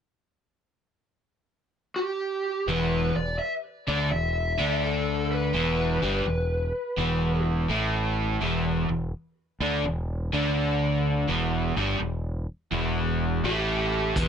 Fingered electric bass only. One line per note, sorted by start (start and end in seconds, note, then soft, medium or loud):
2.68 3.13 E1 medium
3.16 3.38 E1 medium
3.88 4.10 D2 medium
4.12 4.56 E1 medium
4.60 5.51 D2 medium
5.54 5.99 E1 medium
6.03 6.25 G1 medium
6.26 6.71 E1 medium
6.98 7.66 E1 medium
7.70 8.37 A1 medium
8.41 8.86 E1 medium
8.90 9.12 E1 medium
9.60 9.83 D2 medium
9.84 10.30 E1 medium
10.33 11.25 D2 medium
11.29 11.74 E1 medium
11.77 11.99 G1 medium
12.00 12.46 E1 medium
12.72 13.40 E1 medium
13.44 14.12 A1 loud
14.16 14.28 E1 medium